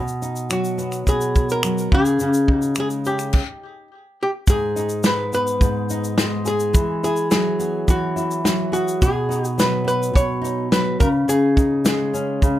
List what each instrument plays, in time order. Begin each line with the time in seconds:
Already playing: nylon-string guitar B2
0.08 shaker
0.22 nylon-string guitar D#4, shaker
0.36 shaker
0.50 nylon-string guitar F#3, hollow-body jazz guitar F#4, finger snap, shaker
0.64 shaker
0.78 nylon-string guitar B3, shaker
0.92 finger snap, shaker
1.07 nylon-string guitar B2, hollow-body jazz guitar G#4, kick, shaker
1.21 shaker
1.35 kick, shaker
1.49 hollow-body jazz guitar A#4, shaker
1.63 nylon-string guitar F#3, finger snap, shaker
1.78 shaker
1.92 nylon-string guitar C#3, hollow-body jazz guitar G#4, kick
2.05 shaker
2.20 nylon-string guitar C#3, shaker
2.34 shaker
2.47 nylon-string guitar D#4, kick
2.56 hollow-body jazz guitar F#4
2.62 shaker
2.75 nylon-string guitar G#3, finger snap, shaker
2.80 hollow-body jazz guitar G#4
2.90 shaker
3.05 nylon-string guitar C#4, hollow-body jazz guitar G4, shaker
3.19 finger snap, shaker
3.33 kick, crash
4.23 hollow-body jazz guitar G4
4.47 nylon-string guitar G#2, hollow-body jazz guitar G#4, kick, shaker
4.76 nylon-string guitar D#4, shaker
4.89 shaker
5.03 nylon-string guitar G#3, hollow-body jazz guitar B4, snare, shaker
5.33 nylon-string guitar B3, hollow-body jazz guitar B4, shaker
5.47 shaker
5.61 nylon-string guitar G#2, kick, shaker
5.90 nylon-string guitar D#4, shaker
6.04 shaker
6.17 nylon-string guitar G#3, snare, shaker
6.45 nylon-string guitar G#4, hollow-body jazz guitar G#4, shaker
6.60 shaker
6.73 nylon-string guitar E3, kick, shaker
7.03 nylon-string guitar E4, hollow-body jazz guitar G#4, shaker
7.16 shaker
7.31 nylon-string guitar F#3, hollow-body jazz guitar G#4, snare, shaker
7.59 nylon-string guitar B3, shaker
7.88 nylon-string guitar E3, hollow-body jazz guitar F#4, kick, shaker
8.16 nylon-string guitar E4, shaker
8.31 shaker
8.44 nylon-string guitar F#3, snare, shaker
8.72 hollow-body jazz guitar F#4, nylon-string guitar G#4, shaker
8.88 shaker
9.02 nylon-string guitar B2, hollow-body jazz guitar G#4, kick, shaker
9.29 nylon-string guitar D#4, shaker
9.45 hollow-body jazz guitar F#4, shaker
9.58 nylon-string guitar F#3, hollow-body jazz guitar B4, snare, shaker
9.84 nylon-string guitar B3, hollow-body jazz guitar B4, shaker
10.03 shaker
10.14 nylon-string guitar B2, hollow-body jazz guitar C#5, kick, shaker
10.41 nylon-string guitar D#4, shaker
10.71 nylon-string guitar F#3, hollow-body jazz guitar B4, snare, shaker
11.00 nylon-string guitar C#3, hollow-body jazz guitar A#4, kick, shaker
11.28 nylon-string guitar C#3, hollow-body jazz guitar G#4, shaker
11.56 nylon-string guitar D#4, kick, shaker
11.84 nylon-string guitar G#3, hollow-body jazz guitar G#4, snare, shaker
12.14 nylon-string guitar C#4, shaker
12.42 nylon-string guitar C#3, kick, shaker